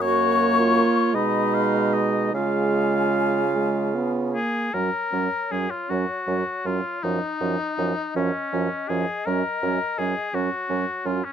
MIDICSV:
0, 0, Header, 1, 6, 480
1, 0, Start_track
1, 0, Key_signature, 6, "major"
1, 0, Tempo, 758534
1, 10, Time_signature, 6, 3, 24, 8
1, 971, Tempo, 801068
1, 2891, Tempo, 767263
1, 3851, Tempo, 747198
1, 5771, Tempo, 715990
1, 7155, End_track
2, 0, Start_track
2, 0, Title_t, "Flute"
2, 0, Program_c, 0, 73
2, 10, Note_on_c, 0, 85, 119
2, 718, Note_off_c, 0, 85, 0
2, 721, Note_on_c, 0, 83, 109
2, 1259, Note_off_c, 0, 83, 0
2, 1455, Note_on_c, 0, 80, 96
2, 2632, Note_off_c, 0, 80, 0
2, 2897, Note_on_c, 0, 73, 62
2, 4313, Note_off_c, 0, 73, 0
2, 4334, Note_on_c, 0, 75, 65
2, 6463, Note_off_c, 0, 75, 0
2, 6486, Note_on_c, 0, 73, 60
2, 7019, Note_off_c, 0, 73, 0
2, 7155, End_track
3, 0, Start_track
3, 0, Title_t, "Oboe"
3, 0, Program_c, 1, 68
3, 10, Note_on_c, 1, 73, 98
3, 725, Note_on_c, 1, 75, 77
3, 734, Note_off_c, 1, 73, 0
3, 977, Note_on_c, 1, 77, 81
3, 986, Note_off_c, 1, 75, 0
3, 1211, Note_on_c, 1, 75, 75
3, 1220, Note_off_c, 1, 77, 0
3, 1453, Note_off_c, 1, 75, 0
3, 1456, Note_on_c, 1, 77, 79
3, 2514, Note_off_c, 1, 77, 0
3, 2655, Note_on_c, 1, 68, 80
3, 2892, Note_on_c, 1, 70, 80
3, 2902, Note_off_c, 1, 68, 0
3, 3380, Note_on_c, 1, 68, 71
3, 3389, Note_off_c, 1, 70, 0
3, 3496, Note_on_c, 1, 65, 67
3, 3505, Note_off_c, 1, 68, 0
3, 3616, Note_on_c, 1, 66, 71
3, 3625, Note_off_c, 1, 65, 0
3, 4101, Note_on_c, 1, 65, 70
3, 4110, Note_off_c, 1, 66, 0
3, 4340, Note_on_c, 1, 63, 73
3, 4350, Note_off_c, 1, 65, 0
3, 5059, Note_off_c, 1, 63, 0
3, 5063, Note_on_c, 1, 61, 66
3, 5530, Note_on_c, 1, 68, 70
3, 5540, Note_off_c, 1, 61, 0
3, 5770, Note_on_c, 1, 70, 85
3, 5780, Note_off_c, 1, 68, 0
3, 6254, Note_on_c, 1, 68, 71
3, 6264, Note_off_c, 1, 70, 0
3, 6499, Note_on_c, 1, 66, 75
3, 6509, Note_off_c, 1, 68, 0
3, 6977, Note_on_c, 1, 65, 66
3, 6987, Note_off_c, 1, 66, 0
3, 7100, Note_on_c, 1, 61, 66
3, 7110, Note_off_c, 1, 65, 0
3, 7155, Note_off_c, 1, 61, 0
3, 7155, End_track
4, 0, Start_track
4, 0, Title_t, "Clarinet"
4, 0, Program_c, 2, 71
4, 19, Note_on_c, 2, 66, 74
4, 373, Note_on_c, 2, 65, 75
4, 382, Note_off_c, 2, 66, 0
4, 729, Note_on_c, 2, 63, 78
4, 738, Note_off_c, 2, 65, 0
4, 1454, Note_off_c, 2, 63, 0
4, 1461, Note_on_c, 2, 65, 72
4, 2672, Note_off_c, 2, 65, 0
4, 2894, Note_on_c, 2, 61, 51
4, 2994, Note_off_c, 2, 61, 0
4, 3135, Note_on_c, 2, 61, 47
4, 3235, Note_off_c, 2, 61, 0
4, 3375, Note_on_c, 2, 61, 44
4, 3475, Note_off_c, 2, 61, 0
4, 3614, Note_on_c, 2, 61, 49
4, 3714, Note_off_c, 2, 61, 0
4, 3853, Note_on_c, 2, 61, 47
4, 3956, Note_off_c, 2, 61, 0
4, 4098, Note_on_c, 2, 61, 43
4, 4200, Note_off_c, 2, 61, 0
4, 4343, Note_on_c, 2, 61, 45
4, 4445, Note_off_c, 2, 61, 0
4, 4582, Note_on_c, 2, 61, 48
4, 4684, Note_off_c, 2, 61, 0
4, 4819, Note_on_c, 2, 61, 41
4, 4922, Note_off_c, 2, 61, 0
4, 5059, Note_on_c, 2, 61, 49
4, 5161, Note_off_c, 2, 61, 0
4, 5300, Note_on_c, 2, 61, 45
4, 5403, Note_off_c, 2, 61, 0
4, 5535, Note_on_c, 2, 61, 47
4, 5638, Note_off_c, 2, 61, 0
4, 5779, Note_on_c, 2, 61, 50
4, 5886, Note_off_c, 2, 61, 0
4, 6024, Note_on_c, 2, 61, 46
4, 6130, Note_off_c, 2, 61, 0
4, 6260, Note_on_c, 2, 61, 44
4, 6365, Note_off_c, 2, 61, 0
4, 6494, Note_on_c, 2, 61, 51
4, 6600, Note_off_c, 2, 61, 0
4, 6731, Note_on_c, 2, 61, 51
4, 6838, Note_off_c, 2, 61, 0
4, 6973, Note_on_c, 2, 61, 50
4, 7080, Note_off_c, 2, 61, 0
4, 7155, End_track
5, 0, Start_track
5, 0, Title_t, "French horn"
5, 0, Program_c, 3, 60
5, 13, Note_on_c, 3, 58, 90
5, 720, Note_on_c, 3, 56, 77
5, 730, Note_off_c, 3, 58, 0
5, 1447, Note_off_c, 3, 56, 0
5, 1450, Note_on_c, 3, 56, 75
5, 2112, Note_off_c, 3, 56, 0
5, 2174, Note_on_c, 3, 56, 71
5, 2415, Note_on_c, 3, 59, 73
5, 2424, Note_off_c, 3, 56, 0
5, 2654, Note_on_c, 3, 58, 58
5, 2663, Note_off_c, 3, 59, 0
5, 2888, Note_off_c, 3, 58, 0
5, 2892, Note_on_c, 3, 54, 52
5, 2992, Note_off_c, 3, 54, 0
5, 3130, Note_on_c, 3, 54, 46
5, 3230, Note_off_c, 3, 54, 0
5, 3375, Note_on_c, 3, 54, 43
5, 3475, Note_off_c, 3, 54, 0
5, 3615, Note_on_c, 3, 54, 46
5, 3715, Note_off_c, 3, 54, 0
5, 3848, Note_on_c, 3, 54, 45
5, 3950, Note_off_c, 3, 54, 0
5, 4092, Note_on_c, 3, 54, 43
5, 4195, Note_off_c, 3, 54, 0
5, 4339, Note_on_c, 3, 53, 51
5, 4442, Note_off_c, 3, 53, 0
5, 4578, Note_on_c, 3, 53, 43
5, 4681, Note_off_c, 3, 53, 0
5, 4818, Note_on_c, 3, 53, 42
5, 4921, Note_off_c, 3, 53, 0
5, 5056, Note_on_c, 3, 53, 45
5, 5158, Note_off_c, 3, 53, 0
5, 5299, Note_on_c, 3, 53, 44
5, 5402, Note_off_c, 3, 53, 0
5, 5537, Note_on_c, 3, 53, 44
5, 5640, Note_off_c, 3, 53, 0
5, 5776, Note_on_c, 3, 54, 53
5, 5883, Note_off_c, 3, 54, 0
5, 6020, Note_on_c, 3, 54, 46
5, 6127, Note_off_c, 3, 54, 0
5, 6258, Note_on_c, 3, 54, 46
5, 6364, Note_off_c, 3, 54, 0
5, 6489, Note_on_c, 3, 54, 50
5, 6596, Note_off_c, 3, 54, 0
5, 6730, Note_on_c, 3, 54, 44
5, 6837, Note_off_c, 3, 54, 0
5, 6973, Note_on_c, 3, 54, 43
5, 7080, Note_off_c, 3, 54, 0
5, 7155, End_track
6, 0, Start_track
6, 0, Title_t, "Bassoon"
6, 0, Program_c, 4, 70
6, 0, Note_on_c, 4, 42, 88
6, 519, Note_off_c, 4, 42, 0
6, 724, Note_on_c, 4, 47, 76
6, 1428, Note_off_c, 4, 47, 0
6, 1452, Note_on_c, 4, 49, 73
6, 2668, Note_off_c, 4, 49, 0
6, 2890, Note_on_c, 4, 42, 58
6, 2990, Note_off_c, 4, 42, 0
6, 3136, Note_on_c, 4, 42, 50
6, 3236, Note_off_c, 4, 42, 0
6, 3379, Note_on_c, 4, 42, 48
6, 3479, Note_off_c, 4, 42, 0
6, 3620, Note_on_c, 4, 42, 51
6, 3720, Note_off_c, 4, 42, 0
6, 3852, Note_on_c, 4, 42, 50
6, 3954, Note_off_c, 4, 42, 0
6, 4093, Note_on_c, 4, 42, 53
6, 4196, Note_off_c, 4, 42, 0
6, 4342, Note_on_c, 4, 42, 54
6, 4445, Note_off_c, 4, 42, 0
6, 4579, Note_on_c, 4, 42, 53
6, 4682, Note_off_c, 4, 42, 0
6, 4818, Note_on_c, 4, 42, 51
6, 4921, Note_off_c, 4, 42, 0
6, 5061, Note_on_c, 4, 42, 54
6, 5163, Note_off_c, 4, 42, 0
6, 5301, Note_on_c, 4, 42, 50
6, 5404, Note_off_c, 4, 42, 0
6, 5537, Note_on_c, 4, 42, 50
6, 5640, Note_off_c, 4, 42, 0
6, 5774, Note_on_c, 4, 42, 54
6, 5881, Note_off_c, 4, 42, 0
6, 6014, Note_on_c, 4, 42, 53
6, 6121, Note_off_c, 4, 42, 0
6, 6253, Note_on_c, 4, 42, 50
6, 6360, Note_off_c, 4, 42, 0
6, 6491, Note_on_c, 4, 42, 55
6, 6598, Note_off_c, 4, 42, 0
6, 6731, Note_on_c, 4, 42, 53
6, 6838, Note_off_c, 4, 42, 0
6, 6971, Note_on_c, 4, 42, 57
6, 7078, Note_off_c, 4, 42, 0
6, 7155, End_track
0, 0, End_of_file